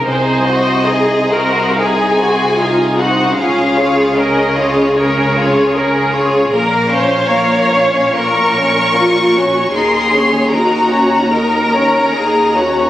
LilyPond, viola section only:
\new Staff \with { instrumentName = "Viola section" } { \time 4/4 \key des \major \tempo 4 = 76 c''4 aes'8 bes'8 aes'4 f'8 ees'8 | f'8 aes'8 bes'8 aes'8 bes'8 aes'8 bes'8 aes'8 | bes'8 c''8 des''4 bes'4 f'8 ges'8 | aes'4 ges'4 bes'4 aes'8 ges'8 | }